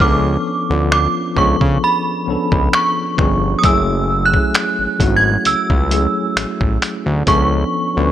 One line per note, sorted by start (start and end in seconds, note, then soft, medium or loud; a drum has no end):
0.00 0.37 C#2 loud
0.00 0.65 F3 medium
0.00 0.65 B3 medium
0.00 0.66 C#4 medium
0.00 0.66 D4 medium
0.00 0.67 A4 medium
0.00 0.88 D6 medium
0.00 kick loud
0.69 1.07 D2 loud
0.69 1.32 F3 medium
0.69 1.32 B3 medium
0.69 1.33 C#4 medium
0.69 1.33 D4 medium
0.73 1.34 F4 medium
0.92 1.34 D6 medium
0.92 finger snap loud
1.35 1.57 C#2 medium
1.35 2.21 F3 medium
1.35 2.21 B3 medium
1.35 2.22 C#4 medium
1.35 2.23 D4 medium
1.35 1.84 C#6 medium
1.35 kick medium
1.39 1.45 G#4 medium
1.46 2.26 A4 medium
1.61 1.78 C#3 medium
1.61 kick medium
1.84 2.70 B5 medium
2.26 2.37 C#2 soft
2.26 3.12 F3 medium
2.26 3.12 B3 medium
2.26 3.13 C#4 medium
2.26 3.14 D4 medium
2.30 3.14 A4 medium
2.52 2.69 C#2 medium
2.52 kick loud
2.73 3.40 C#6 medium
2.73 finger snap loud
3.17 3.56 G1 medium
3.17 3.60 F3 medium
3.17 3.61 B3 medium
3.17 3.61 C#4 medium
3.17 3.62 D4 medium
3.17 finger snap medium
3.17 kick medium
3.21 3.62 G#4 medium
3.59 4.28 F#3 medium
3.59 3.64 D#6 medium
3.63 4.38 F#1 loud
3.63 4.29 A3 medium
3.63 4.29 C#4 medium
3.63 4.30 E4 medium
3.63 4.30 G#4 loud
3.63 4.27 E6 medium
3.63 kick loud
3.63 closed hi-hat medium
4.25 5.18 F#6 loud
4.32 4.95 F#3 medium
4.32 4.96 A3 medium
4.32 4.96 C#4 medium
4.32 4.97 E4 medium
4.32 kick medium
4.37 4.97 G#4 medium
4.54 finger snap loud
4.54 closed hi-hat medium
4.79 4.87 G#1 soft
4.98 5.37 G#1 loud
4.98 5.84 F#3 medium
4.98 5.85 A3 medium
4.98 5.86 C#4 medium
4.98 5.86 E4 medium
4.98 kick medium
4.98 closed hi-hat medium
5.03 5.87 F#4 medium
5.17 5.47 G#6 medium
5.45 5.55 C#2 medium
5.45 6.33 E6 medium
5.45 closed hi-hat medium
5.70 6.07 C#2 medium
5.70 kick medium
5.90 7.18 F#3 medium
5.90 7.19 A3 medium
5.90 7.19 C#4 medium
5.90 7.20 E4 medium
5.90 closed hi-hat medium
5.94 7.20 G#4 medium
6.36 6.46 A1 soft
6.36 finger snap loud
6.36 closed hi-hat medium
6.61 6.78 A1 medium
6.61 kick medium
6.82 finger snap medium
6.82 closed hi-hat medium
7.06 7.23 D2 medium
7.26 7.65 C#2 loud
7.26 7.92 F3 medium
7.26 7.92 B3 medium
7.26 7.93 C#4 medium
7.26 7.93 D4 medium
7.26 8.12 C#6 medium
7.26 kick loud
7.26 closed hi-hat medium
7.30 7.94 A4 loud
7.95 8.12 D2 medium
7.95 8.12 F3 medium
7.95 8.12 B3 medium
7.95 8.12 C#4 medium
7.95 8.12 D4 medium
8.00 8.12 B4 medium